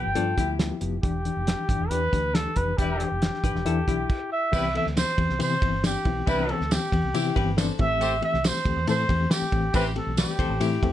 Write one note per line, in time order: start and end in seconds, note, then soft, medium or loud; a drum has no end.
0.00 0.15 G4 medium
0.00 0.15 B4 medium
0.00 0.56 G5 medium
0.06 0.13 G1 medium
0.15 0.33 G2 medium
0.15 0.30 F3 medium
0.15 0.31 B3 medium
0.15 0.31 D4 loud
0.15 0.37 F4 medium
0.15 0.37 A4 medium
0.15 closed hi-hat medium
0.37 0.70 D2 medium
0.37 0.53 F3 medium
0.37 0.53 B3 medium
0.37 1.01 E4 medium
0.37 1.00 G4 medium
0.37 0.53 G4 medium
0.37 kick medium
0.37 closed hi-hat medium
0.59 0.74 F3 medium
0.59 0.75 B3 medium
0.59 0.75 G4 medium
0.59 snare loud
0.59 closed hi-hat medium
0.81 0.98 F1 medium
0.81 0.96 F3 medium
0.81 0.96 B3 medium
0.81 0.97 G4 medium
0.81 closed hi-hat medium
1.03 1.28 E1 loud
1.03 1.18 E3 medium
1.03 1.18 D4 medium
1.03 1.91 G4 medium
1.03 1.19 G4 medium
1.03 kick medium
1.03 closed hi-hat medium
1.25 1.40 E3 medium
1.25 1.40 D4 medium
1.25 1.41 G4 medium
1.25 closed hi-hat medium
1.37 1.53 F1 medium
1.47 1.62 E3 medium
1.47 1.62 D4 medium
1.47 1.62 G4 medium
1.47 snare loud
1.47 closed hi-hat medium
1.69 1.77 G1 medium
1.69 1.84 E3 medium
1.69 1.84 D4 medium
1.69 1.85 G4 medium
1.69 kick medium
1.69 closed hi-hat medium
1.80 1.88 E1 medium
1.89 2.07 E2 medium
1.89 2.06 E3 medium
1.89 2.06 D4 medium
1.89 2.06 G4 loud
1.89 2.36 B4 loud
1.89 closed hi-hat loud
2.13 2.45 D2 loud
2.13 2.28 E3 medium
2.13 2.28 D4 medium
2.13 2.28 G4 medium
2.13 kick medium
2.13 closed hi-hat medium
2.34 2.49 E3 medium
2.34 2.49 D4 medium
2.34 2.50 G4 medium
2.34 2.58 A4 medium
2.34 snare loud
2.34 closed hi-hat medium
2.56 2.73 F1 medium
2.56 2.72 E3 medium
2.56 2.72 D4 medium
2.56 2.72 G4 medium
2.56 2.79 B4 medium
2.56 kick medium
2.56 closed hi-hat medium
2.78 3.03 E1 loud
2.78 2.93 E3 medium
2.78 3.07 G3 medium
2.78 2.93 D4 medium
2.78 3.07 E4 medium
2.78 4.31 G4 medium
2.78 2.94 G4 medium
2.78 3.07 B4 loud
2.78 kick medium
2.78 closed hi-hat medium
3.00 3.15 E3 medium
3.00 3.15 D4 medium
3.00 3.16 G4 medium
3.00 closed hi-hat medium
3.12 3.28 F1 medium
3.22 3.37 E3 medium
3.22 3.37 D4 medium
3.22 3.37 G4 medium
3.22 snare loud
3.22 closed hi-hat medium
3.34 snare soft
3.43 3.52 G1 medium
3.43 3.59 E3 medium
3.43 3.59 D4 medium
3.43 3.59 G4 medium
3.43 3.65 G4 medium
3.43 3.65 B4 medium
3.43 kick medium
3.43 closed hi-hat medium
3.55 3.63 E1 medium
3.55 snare soft
3.65 3.82 E2 medium
3.65 3.80 E3 loud
3.65 3.80 D4 loud
3.65 3.81 E4 loud
3.65 3.87 A4 medium
3.65 closed hi-hat loud
3.88 4.04 B1 medium
3.88 4.03 E3 medium
3.88 4.03 D4 medium
3.88 4.50 E4 medium
3.88 4.03 E4 loud
3.88 4.50 G4 medium
3.88 kick medium
3.88 closed hi-hat medium
4.09 kick loud
4.09 crash medium
4.32 4.72 E5 medium
4.52 4.77 C2 loud
4.52 4.67 E3 loud
4.52 4.67 G3 medium
4.52 4.68 B3 medium
4.52 4.68 C4 medium
4.52 4.67 E4 medium
4.52 4.68 G4 loud
4.52 4.67 B4 loud
4.52 kick loud
4.52 crash medium
4.52 tambourine medium
4.74 4.90 E3 medium
4.74 4.90 B3 medium
4.74 4.90 C4 medium
4.74 4.90 A4 medium
4.74 4.86 E5 medium
4.74 ride medium
4.86 5.02 D2 medium
4.86 snare soft
4.96 5.11 E3 medium
4.96 5.11 B3 medium
4.96 5.11 C4 medium
4.96 5.12 G4 medium
4.96 5.38 C5 loud
4.96 snare loud
4.96 ride medium
4.96 tambourine loud
5.08 snare soft
5.18 5.26 E2 medium
5.18 5.33 E3 medium
5.18 5.33 B3 medium
5.18 5.34 C4 medium
5.18 5.34 G4 medium
5.18 kick medium
5.18 ride medium
5.29 5.38 C2 medium
5.29 snare soft
5.39 5.57 C3 medium
5.39 5.54 E3 loud
5.39 5.55 B3 medium
5.39 5.55 C4 medium
5.39 5.55 G4 loud
5.39 5.82 C5 loud
5.39 ride medium
5.39 tambourine medium
5.62 5.94 G1 medium
5.62 5.77 E3 medium
5.62 5.77 B3 medium
5.62 5.77 C4 medium
5.62 5.77 E4 medium
5.62 kick loud
5.62 ride medium
5.83 5.98 E3 medium
5.83 5.98 B3 medium
5.83 5.99 C4 medium
5.83 5.99 D4 medium
5.83 6.30 G4 medium
5.83 snare loud
5.83 ride medium
5.83 tambourine loud
6.05 6.22 B1 medium
6.05 6.21 E3 medium
6.05 6.21 B3 medium
6.05 6.21 C4 medium
6.05 6.21 E4 medium
6.05 kick medium
6.05 ride medium
6.27 6.51 C2 loud
6.27 6.42 E3 medium
6.27 6.55 G3 loud
6.27 6.42 B3 medium
6.27 6.42 C4 medium
6.27 6.42 D4 loud
6.27 6.55 E4 loud
6.27 6.55 B4 loud
6.27 6.52 B4 medium
6.27 kick loud
6.27 ride medium
6.27 tambourine medium
6.48 6.63 E3 medium
6.48 6.64 B3 medium
6.48 6.64 C4 medium
6.48 6.64 A4 medium
6.48 6.74 A4 medium
6.48 ride medium
6.60 6.76 D2 medium
6.60 snare soft
6.70 6.85 E3 medium
6.70 6.85 B3 medium
6.70 6.86 C4 medium
6.70 6.86 G4 medium
6.70 7.58 G4 medium
6.70 snare loud
6.70 ride medium
6.70 tambourine loud
6.92 7.00 E2 medium
6.92 7.07 E3 medium
6.92 7.07 B3 medium
6.92 7.08 C4 medium
6.92 7.08 G4 medium
6.92 kick medium
6.92 ride medium
7.04 7.12 C2 medium
7.14 7.30 C3 loud
7.14 7.29 E3 loud
7.14 7.29 B3 medium
7.14 7.29 C4 medium
7.14 7.35 E4 medium
7.14 7.35 G4 medium
7.14 7.29 G4 loud
7.14 ride medium
7.14 tambourine medium
7.36 7.68 G1 loud
7.36 7.51 E3 loud
7.36 7.51 B3 medium
7.36 7.51 C4 medium
7.36 7.51 G4 loud
7.36 7.57 G4 medium
7.36 7.56 B4 loud
7.36 kick medium
7.36 ride medium
7.57 7.72 E3 loud
7.57 7.72 B3 loud
7.57 7.72 C4 loud
7.57 7.72 D4 loud
7.57 7.99 A4 medium
7.57 7.99 C5 medium
7.57 snare loud
7.57 ride medium
7.57 tambourine loud
7.79 8.20 A1 medium
7.79 8.14 E3 medium
7.79 8.14 A3 medium
7.79 8.14 C4 medium
7.79 8.14 G4 loud
7.79 8.20 E5 loud
7.79 kick loud
7.79 ride medium
8.01 8.15 A3 loud
8.01 8.15 G4 loud
8.01 8.15 C5 loud
8.01 ride medium
8.01 tambourine medium
8.21 8.37 E3 medium
8.21 8.37 A3 medium
8.21 8.37 C4 medium
8.21 8.37 G4 medium
8.21 8.48 E5 medium
8.21 ride medium
8.34 8.50 C2 medium
8.34 snare soft
8.44 8.59 E3 medium
8.44 8.59 A3 medium
8.44 8.59 C4 medium
8.44 8.59 G4 medium
8.44 8.89 C5 medium
8.44 snare loud
8.44 ride medium
8.44 tambourine loud
8.55 snare soft
8.65 8.74 D2 medium
8.65 8.80 E3 medium
8.65 8.80 A3 medium
8.65 8.81 C4 medium
8.65 8.81 G4 medium
8.65 kick medium
8.65 ride medium
8.77 8.85 E2 loud
8.87 9.04 A2 loud
8.87 9.02 E3 loud
8.87 9.02 A3 medium
8.87 9.03 C4 medium
8.87 9.03 A4 loud
8.87 9.33 C5 loud
8.87 ride medium
8.87 tambourine medium
9.09 9.25 E2 loud
9.09 9.24 E3 medium
9.09 9.24 A3 medium
9.09 9.24 C4 medium
9.09 9.25 G4 medium
9.09 kick loud
9.09 ride medium
9.30 9.45 E3 medium
9.30 9.45 A3 medium
9.30 9.46 C4 medium
9.30 9.46 G4 medium
9.30 9.74 G4 medium
9.30 snare loud
9.30 ride medium
9.30 tambourine loud
9.42 muted fingered electric bass stroke soft
9.52 9.69 A1 medium
9.52 9.67 E3 medium
9.52 9.68 A3 medium
9.52 9.67 C4 medium
9.52 9.68 G4 loud
9.52 kick medium
9.52 ride medium
9.74 9.98 A1 loud
9.74 9.89 E3 medium
9.74 9.88 E3 loud
9.74 9.89 A3 medium
9.74 9.88 C4 loud
9.74 9.89 C4 medium
9.74 9.88 G4 loud
9.74 9.89 G4 loud
9.74 9.85 B4 medium
9.74 kick loud
9.74 ride medium
9.74 tambourine medium
9.95 10.11 E3 medium
9.95 10.11 A3 medium
9.95 10.11 C4 medium
9.95 10.11 G4 medium
9.95 10.17 A4 medium
9.95 ride medium
10.07 10.23 B1 medium
10.17 10.32 E3 medium
10.17 10.32 A3 medium
10.17 10.32 C4 medium
10.17 10.32 G4 medium
10.17 10.93 G4 medium
10.17 10.39 B4 medium
10.17 10.38 D5 medium
10.17 snare loud
10.17 ride medium
10.17 tambourine loud
10.29 snare soft
10.39 10.47 C2 medium
10.39 10.54 E3 medium
10.39 10.54 A3 medium
10.39 10.54 C4 medium
10.39 10.54 G4 medium
10.39 10.60 A4 medium
10.39 10.60 C5 medium
10.39 kick medium
10.39 ride medium
10.50 10.58 A1 loud
10.60 10.77 A2 loud
10.60 10.76 E3 loud
10.60 10.76 A3 loud
10.60 10.76 C4 medium
10.60 10.93 E4 medium
10.60 10.93 G4 medium
10.60 10.76 G4 loud
10.60 ride medium
10.60 tambourine medium
10.83 10.93 E2 medium
10.83 10.93 E3 medium
10.83 10.93 A3 medium
10.83 10.93 C4 medium
10.83 10.93 G4 loud
10.83 kick loud
10.83 ride medium